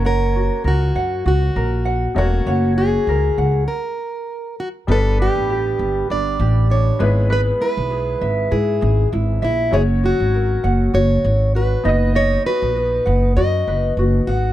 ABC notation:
X:1
M:4/4
L:1/16
Q:"Swing 16ths" 1/4=99
K:F#mix
V:1 name="Ukulele"
[cf]2 F2 A2 f2 F2 A2 f2 A2 | [cf]2 F2 A2 f2 z8 | B2 =D2 =G4 D2 G2 D2 B2 | B2 E2 G2 e2 E2 G2 E2 e2 |
c2 F2 A2 f2 F4 F2 d2 | d2 F2 B2 f2 F2 B2 F2 f2 |]
V:2 name="Steel-string acoustic guitar"
A4 F4 F6 F2- | F2 G6 A6 F2 | =A2 =G6 =d4 c4 | B2 B6 G4 z2 E2 |
G2 F6 c4 B4 | c2 B6 d4 z2 F2 |]
V:3 name="Upright piano"
[A,CFc]12- [A,CFc]2 [=A,^A,CFc]2- | [=A,^A,CFc]8 z8 | [=G,B,=DB]12- [G,B,DB]2 [^G,B,EB]2- | [G,B,EB]12- [G,B,EB]2 z2 |
[F,CFc]12- [F,CFc]2 [B,DFd]2- | [B,DFd]12- [B,DFd]2 z2 |]
V:4 name="Upright bass" clef=bass
F,,,4 C,,2 F,,2 C,,2 A,,,4 E,,,2 | F,,,4 C,,2 C,,2 z8 | =G,,,3 =A,,,3 G,,,2 G,,,2 A,,,4 ^G,,,2- | G,,,2 z B,,,3 G,,,2 G,,2 G,,,2 G,,,2 A,,,2 |
F,,,3 G,,,3 F,,,2 F,,,2 G,,,4 F,,,2- | F,,,2 z A,,,3 F,,,2 F,,2 F,,,2 F,,,2 G,,,2 |]